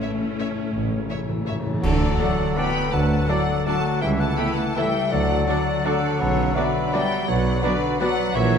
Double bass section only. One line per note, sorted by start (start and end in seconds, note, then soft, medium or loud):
0.74 1.04 A1 medium
1.83 2.13 D2 medium
2.92 3.22 D2 medium
4.02 4.32 C#2 medium
5.11 5.41 D2 medium
6.20 6.50 B1 medium
7.28 7.58 B1 medium
8.35 8.58 A#1 medium